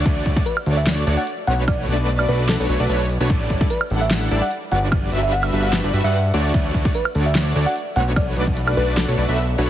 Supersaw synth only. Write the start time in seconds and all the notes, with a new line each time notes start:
0.06 A3 D4
0.26 A3 D4 F#4 C#5 D5
0.66 A3 D4 F#4 C#5 D5
1.07 A3 D4 F#4 C#5 D5
1.48 A3 D4 F#4 B4 C#5
1.88 A3 D4 F#4 B4 D5
2.29 A3 D4 F#4 B4 D5
2.60 A3 D4 F#4 B4 C#5
2.69 A3 D4 F#4 B4 C#5
2.80 A3 D4 F#4 B4 D5
2.89 A3 D4 F#4 B4 C#5
3.20 A3 D4 F#4 B4 C#5
3.50 G3 D4 E4 A4 D5
3.91 G3 D4 E4 A4 F#5
4.31 G3 D4 E4 A4 D5
4.72 G3 D4 F#4 B4 D5
5.12 G3 D4 F#4 B4 E5
5.53 G3 D4 F#4 B4 E5
5.84 G3 D4 F#4 B4 D5
5.93 G3 D4 F#4 B4 E5
6.04 G3 D4 F#4 B4 F#5
6.34 A3 D4 F#4 C#5 D5
6.54 A3 D4 F#4 C#5 D5
6.75 A3 D4 F#4 C#5 D5
7.15 A3 D4 F#4 C#5 D5
7.56 A3 D4 F#4 C#5 D5
7.96 A3 D4 F#4 B4 C#5
8.37 A3 D4 F#4 B4 D5
8.77 A3 D4 F#4 B4 D5
9.08 A3 D4 F#4 B4 C#5
9.18 A3 D4 F#4 B4 D5
9.28 A3 D4 F#4 B4 E5
9.58 A3 D4 F#4 B4 C#5